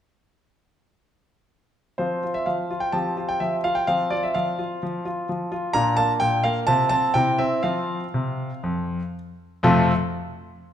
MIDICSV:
0, 0, Header, 1, 2, 480
1, 0, Start_track
1, 0, Key_signature, -1, "major"
1, 0, Tempo, 480769
1, 1986, Time_signature, 4, 2, 24, 8
1, 2462, Tempo, 468384
1, 7262, Tempo, 493016
1, 10750, End_track
2, 0, Start_track
2, 0, Title_t, "Grand piano"
2, 0, Program_c, 0, 0
2, 1977, Note_on_c, 0, 72, 69
2, 1984, Note_on_c, 0, 60, 37
2, 1984, Note_on_c, 0, 65, 40
2, 1987, Note_on_c, 0, 53, 53
2, 2218, Note_off_c, 0, 65, 0
2, 2219, Note_off_c, 0, 53, 0
2, 2233, Note_on_c, 0, 65, 44
2, 2338, Note_on_c, 0, 76, 67
2, 2339, Note_off_c, 0, 72, 0
2, 2455, Note_on_c, 0, 77, 56
2, 2459, Note_off_c, 0, 65, 0
2, 2459, Note_off_c, 0, 76, 0
2, 2465, Note_on_c, 0, 53, 43
2, 2698, Note_off_c, 0, 53, 0
2, 2708, Note_on_c, 0, 65, 50
2, 2808, Note_on_c, 0, 79, 71
2, 2821, Note_off_c, 0, 77, 0
2, 2904, Note_off_c, 0, 60, 0
2, 2932, Note_on_c, 0, 81, 73
2, 2937, Note_off_c, 0, 79, 0
2, 2938, Note_on_c, 0, 67, 37
2, 2939, Note_on_c, 0, 53, 56
2, 2940, Note_off_c, 0, 65, 0
2, 2942, Note_on_c, 0, 60, 37
2, 3177, Note_off_c, 0, 53, 0
2, 3186, Note_on_c, 0, 65, 50
2, 3301, Note_off_c, 0, 81, 0
2, 3302, Note_on_c, 0, 79, 74
2, 3420, Note_off_c, 0, 65, 0
2, 3421, Note_on_c, 0, 76, 70
2, 3425, Note_off_c, 0, 79, 0
2, 3426, Note_on_c, 0, 53, 48
2, 3567, Note_off_c, 0, 76, 0
2, 3660, Note_off_c, 0, 53, 0
2, 3665, Note_on_c, 0, 77, 79
2, 3674, Note_on_c, 0, 65, 54
2, 3778, Note_on_c, 0, 79, 73
2, 3787, Note_off_c, 0, 77, 0
2, 3864, Note_off_c, 0, 67, 0
2, 3866, Note_off_c, 0, 60, 0
2, 3895, Note_off_c, 0, 65, 0
2, 3904, Note_off_c, 0, 79, 0
2, 3904, Note_on_c, 0, 77, 84
2, 3910, Note_on_c, 0, 65, 42
2, 3911, Note_on_c, 0, 53, 60
2, 3911, Note_on_c, 0, 60, 41
2, 4130, Note_off_c, 0, 65, 0
2, 4141, Note_on_c, 0, 74, 70
2, 4144, Note_off_c, 0, 53, 0
2, 4145, Note_on_c, 0, 65, 54
2, 4148, Note_off_c, 0, 77, 0
2, 4267, Note_off_c, 0, 74, 0
2, 4271, Note_on_c, 0, 76, 66
2, 4382, Note_off_c, 0, 65, 0
2, 4386, Note_on_c, 0, 77, 75
2, 4392, Note_off_c, 0, 76, 0
2, 4397, Note_on_c, 0, 53, 52
2, 4628, Note_off_c, 0, 53, 0
2, 4636, Note_on_c, 0, 65, 58
2, 4866, Note_off_c, 0, 65, 0
2, 4883, Note_on_c, 0, 53, 60
2, 5103, Note_off_c, 0, 77, 0
2, 5109, Note_off_c, 0, 53, 0
2, 5115, Note_on_c, 0, 65, 64
2, 5342, Note_off_c, 0, 65, 0
2, 5357, Note_on_c, 0, 53, 58
2, 5581, Note_off_c, 0, 53, 0
2, 5589, Note_on_c, 0, 65, 66
2, 5782, Note_off_c, 0, 60, 0
2, 5807, Note_off_c, 0, 65, 0
2, 5812, Note_on_c, 0, 82, 106
2, 5822, Note_on_c, 0, 46, 72
2, 5822, Note_on_c, 0, 62, 53
2, 5823, Note_on_c, 0, 65, 55
2, 6031, Note_off_c, 0, 82, 0
2, 6048, Note_on_c, 0, 81, 102
2, 6053, Note_off_c, 0, 46, 0
2, 6059, Note_on_c, 0, 58, 64
2, 6195, Note_off_c, 0, 81, 0
2, 6286, Note_on_c, 0, 79, 94
2, 6290, Note_off_c, 0, 58, 0
2, 6297, Note_on_c, 0, 46, 63
2, 6528, Note_off_c, 0, 46, 0
2, 6530, Note_off_c, 0, 79, 0
2, 6530, Note_on_c, 0, 77, 92
2, 6539, Note_on_c, 0, 58, 65
2, 6675, Note_off_c, 0, 77, 0
2, 6735, Note_off_c, 0, 62, 0
2, 6735, Note_off_c, 0, 65, 0
2, 6767, Note_on_c, 0, 81, 106
2, 6770, Note_off_c, 0, 58, 0
2, 6772, Note_on_c, 0, 65, 53
2, 6779, Note_on_c, 0, 60, 53
2, 6780, Note_on_c, 0, 48, 71
2, 6984, Note_off_c, 0, 81, 0
2, 6996, Note_off_c, 0, 60, 0
2, 7000, Note_on_c, 0, 81, 105
2, 7011, Note_on_c, 0, 60, 69
2, 7012, Note_off_c, 0, 48, 0
2, 7227, Note_off_c, 0, 65, 0
2, 7246, Note_off_c, 0, 60, 0
2, 7250, Note_on_c, 0, 79, 92
2, 7254, Note_off_c, 0, 81, 0
2, 7262, Note_on_c, 0, 60, 45
2, 7263, Note_on_c, 0, 48, 64
2, 7264, Note_on_c, 0, 64, 48
2, 7483, Note_off_c, 0, 60, 0
2, 7490, Note_on_c, 0, 76, 85
2, 7491, Note_off_c, 0, 48, 0
2, 7492, Note_off_c, 0, 79, 0
2, 7497, Note_on_c, 0, 60, 62
2, 7706, Note_off_c, 0, 64, 0
2, 7723, Note_off_c, 0, 60, 0
2, 7726, Note_on_c, 0, 77, 77
2, 7733, Note_on_c, 0, 65, 49
2, 7734, Note_off_c, 0, 76, 0
2, 7735, Note_on_c, 0, 53, 62
2, 7738, Note_on_c, 0, 60, 54
2, 8077, Note_off_c, 0, 53, 0
2, 8125, Note_off_c, 0, 65, 0
2, 8128, Note_off_c, 0, 60, 0
2, 8226, Note_on_c, 0, 48, 61
2, 8565, Note_off_c, 0, 48, 0
2, 8707, Note_on_c, 0, 41, 59
2, 9048, Note_off_c, 0, 41, 0
2, 9189, Note_off_c, 0, 77, 0
2, 9678, Note_on_c, 0, 41, 94
2, 9684, Note_on_c, 0, 48, 78
2, 9684, Note_on_c, 0, 57, 83
2, 9686, Note_on_c, 0, 60, 77
2, 9686, Note_on_c, 0, 65, 89
2, 9689, Note_on_c, 0, 69, 82
2, 9942, Note_off_c, 0, 41, 0
2, 9945, Note_off_c, 0, 48, 0
2, 9945, Note_off_c, 0, 57, 0
2, 9946, Note_off_c, 0, 60, 0
2, 9946, Note_off_c, 0, 65, 0
2, 9948, Note_off_c, 0, 69, 0
2, 10750, End_track
0, 0, End_of_file